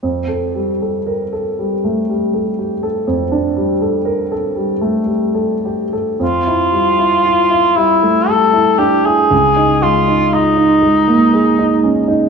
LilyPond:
<<
  \new Staff \with { instrumentName = "Cor anglais" } { \time 3/4 \key f \major \tempo 4 = 59 r2. | r2. | f'4. e'8 a'8 g'16 aes'16~ | aes'8 f'8 ees'4. r8 | }
  \new Staff \with { instrumentName = "Grand piano" } { \time 3/4 \key f \major f,16 a'16 g16 a'16 bes'16 a'16 g16 a16 g16 a'16 g'16 a'16 | f,16 d'16 g16 a'16 bes'16 a'16 g16 a16 g16 a'16 g'16 a'16 | f,16 e'16 g16 e'16 f'16 e'16 g16 a16 g16 e'16 d'16 e'16 | des,16 ees'16 aes16 ees'16 f'16 ees'16 aes16 bes16 aes16 ees'16 des'16 ees'16 | }
>>